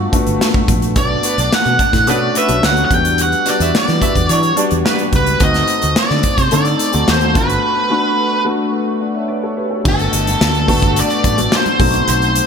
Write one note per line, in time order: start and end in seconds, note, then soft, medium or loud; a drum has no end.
0.00 0.12 A3 medium
0.00 0.13 B3 medium
0.00 0.13 D4 medium
0.00 0.98 F4 medium
0.00 0.13 F#4 medium
0.12 0.73 A3 medium
0.12 0.74 B3 medium
0.12 0.74 D4 medium
0.12 0.74 F#4 medium
0.12 kick medium
0.12 closed hi-hat medium
0.27 0.37 G1 medium
0.27 closed hi-hat soft
0.41 snare medium
0.54 kick medium
0.68 0.96 A#1 medium
0.68 kick medium
0.68 closed hi-hat medium
0.82 closed hi-hat soft
0.95 1.17 B1 medium
0.95 1.77 A3 medium
0.95 1.77 B3 medium
0.95 1.78 D4 medium
0.95 1.78 F#4 medium
0.95 1.54 D5 medium
0.95 kick loud
0.95 closed hi-hat medium
1.23 1.35 B3 medium
1.23 1.35 B4 medium
1.23 closed hi-hat medium
1.38 1.48 B1 medium
1.38 1.50 D4 medium
1.38 1.49 D5 medium
1.38 closed hi-hat soft
1.53 2.10 F#5 medium
1.53 snare loud
1.65 1.76 B2 medium
1.65 closed hi-hat soft
1.79 1.91 D4 medium
1.79 1.91 D5 medium
1.79 kick medium
1.79 closed hi-hat medium
1.93 2.07 A2 medium
1.93 kick medium
1.93 snare soft
1.93 closed hi-hat soft
2.07 2.28 B2 medium
2.07 2.38 A3 medium
2.07 2.19 B3 medium
2.07 2.38 C#4 medium
2.07 2.38 D4 medium
2.07 2.39 F#4 medium
2.07 2.19 B4 medium
2.07 2.37 D5 medium
2.07 closed hi-hat medium
2.35 2.58 B3 medium
2.35 2.58 B4 medium
2.35 2.65 E5 medium
2.35 closed hi-hat medium
2.48 2.59 B1 medium
2.48 2.90 A3 medium
2.48 2.91 C#4 medium
2.48 2.89 D4 medium
2.48 2.90 F#4 medium
2.48 closed hi-hat soft
2.63 2.84 D2 medium
2.63 2.84 F#5 medium
2.63 snare medium
2.77 closed hi-hat soft
2.85 2.91 F#5 medium
2.90 3.32 E2 medium
2.90 3.35 G3 medium
2.90 3.35 B3 medium
2.90 3.35 D4 medium
2.90 3.35 F#4 medium
2.90 3.21 G5 medium
2.90 kick medium
2.90 closed hi-hat medium
3.05 closed hi-hat soft
3.18 3.49 F#5 loud
3.18 closed hi-hat medium
3.32 closed hi-hat soft
3.45 3.86 G3 medium
3.45 3.86 B3 medium
3.45 3.87 D4 medium
3.45 3.58 D4 medium
3.45 3.87 F#4 medium
3.45 3.58 D5 medium
3.45 closed hi-hat medium
3.49 3.76 D5 medium
3.60 3.70 E2 medium
3.60 3.71 E4 medium
3.60 3.71 E5 medium
3.60 closed hi-hat soft
3.75 4.31 D5 medium
3.75 snare loud
3.88 3.99 E3 medium
3.88 snare soft
3.88 closed hi-hat soft
4.00 4.08 F#3 soft
4.00 4.42 B3 medium
4.00 4.42 D4 medium
4.00 4.13 E4 medium
4.00 4.42 F#4 medium
4.00 4.13 E5 medium
4.00 kick medium
4.00 closed hi-hat medium
4.07 4.45 G3 medium
4.16 4.26 E2 medium
4.16 kick medium
4.16 closed hi-hat soft
4.29 4.50 E3 medium
4.29 4.41 D4 medium
4.29 4.55 C#5 medium
4.29 4.41 D5 medium
4.29 closed hi-hat medium
4.43 closed hi-hat soft
4.56 5.18 G3 medium
4.56 5.18 B3 medium
4.56 4.79 D4 loud
4.56 5.18 D4 medium
4.56 5.18 F#4 medium
4.56 4.79 D5 medium
4.56 closed hi-hat medium
4.71 4.82 E2 medium
4.71 closed hi-hat soft
4.84 5.07 B3 medium
4.84 5.07 B4 loud
4.84 snare loud
4.99 closed hi-hat soft
5.13 5.34 C#2 medium
5.13 5.43 B4 medium
5.13 kick medium
5.13 closed hi-hat medium
5.27 closed hi-hat soft
5.40 5.62 D2 loud
5.40 6.22 A3 medium
5.40 6.22 C4 medium
5.40 6.22 D#4 medium
5.40 6.22 F#4 medium
5.40 5.98 D#5 loud
5.40 kick loud
5.40 closed hi-hat medium
5.54 snare soft
5.54 closed hi-hat soft
5.67 closed hi-hat medium
5.82 5.93 D2 medium
5.82 closed hi-hat soft
5.96 6.42 D5 loud
5.96 snare loud
6.10 6.21 D3 medium
6.10 snare soft
6.23 kick medium
6.23 closed hi-hat medium
6.38 6.48 C3 medium
6.38 kick medium
6.38 closed hi-hat soft
6.42 6.53 C5 loud
6.51 6.73 D3 medium
6.51 6.82 A3 medium
6.51 6.83 C4 medium
6.51 6.83 D#4 medium
6.51 6.83 A4 medium
6.51 7.10 D5 medium
6.51 closed hi-hat medium
6.65 closed hi-hat soft
6.79 closed hi-hat medium
6.92 7.04 D2 medium
6.92 7.33 A3 medium
6.92 7.35 C4 medium
6.92 7.35 D#4 medium
6.92 7.35 F#4 medium
6.92 closed hi-hat soft
7.08 7.37 D#2 medium
7.08 7.37 C5 medium
7.08 snare loud
7.21 closed hi-hat soft
7.34 7.56 G1 medium
7.34 7.79 A3 medium
7.34 7.79 B3 medium
7.34 7.79 D4 medium
7.34 7.42 F4 medium
7.34 8.43 B4 medium
7.34 kick medium
7.34 closed hi-hat medium
7.41 7.83 F#4 medium
7.50 closed hi-hat soft
7.90 8.31 A3 medium
7.90 8.31 B3 medium
7.90 8.31 D4 medium
7.90 8.32 F#4 medium
8.45 8.86 A3 medium
8.45 8.87 B3 medium
8.45 8.87 D4 medium
8.45 8.87 F#4 medium
9.00 9.15 D5 soft
9.00 9.14 F#5 medium
9.14 9.29 C#5 medium
9.14 9.28 E5 medium
9.28 9.43 B4 medium
9.28 9.42 D5 medium
9.43 9.57 A4 medium
9.43 9.56 C#5 medium
9.57 9.71 G4 medium
9.57 9.70 B4 medium
9.71 9.84 F#4 soft
9.71 9.97 A4 medium
9.84 10.06 G1 medium
9.84 10.46 A3 medium
9.84 10.46 B3 medium
9.84 10.46 D4 medium
9.84 10.46 F#4 medium
9.84 kick loud
9.84 crash medium
9.84 low conga medium
9.88 11.00 A4 medium
9.99 closed hi-hat soft
9.99 muted conga soft
10.13 10.34 G1 medium
10.13 closed hi-hat medium
10.27 closed hi-hat medium
10.27 high conga medium
10.41 10.70 D2 medium
10.41 snare loud
10.55 closed hi-hat soft
10.67 11.00 G1 medium
10.67 11.19 A3 medium
10.67 11.19 B3 medium
10.67 11.19 D4 medium
10.67 11.19 F#4 loud
10.67 kick medium
10.67 open hi-hat medium
10.67 high conga soft
10.67 low conga medium
10.82 kick medium
10.82 closed hi-hat soft
10.96 11.55 D5 medium
10.96 closed hi-hat medium
11.10 closed hi-hat soft
11.10 muted conga soft
11.24 11.45 A1 medium
11.24 kick medium
11.24 closed hi-hat medium
11.24 high conga medium
11.37 11.78 A3 medium
11.37 11.79 B3 medium
11.37 11.80 D4 medium
11.37 11.79 F#4 medium
11.37 closed hi-hat medium
11.37 high conga medium
11.52 12.09 C5 medium
11.52 snare loud
11.66 closed hi-hat soft
11.66 muted conga soft
11.66 high conga medium
11.80 12.01 B1 medium
11.80 12.47 A3 medium
11.80 12.47 C4 medium
11.80 12.47 D#4 medium
11.80 12.47 F#4 medium
11.80 kick medium
11.80 open hi-hat medium
11.94 closed hi-hat soft
11.94 high conga soft
12.08 12.40 B1 loud
12.08 12.47 C5 medium
12.08 closed hi-hat medium
12.08 muted conga soft
12.08 low conga medium
12.22 closed hi-hat soft
12.36 closed hi-hat medium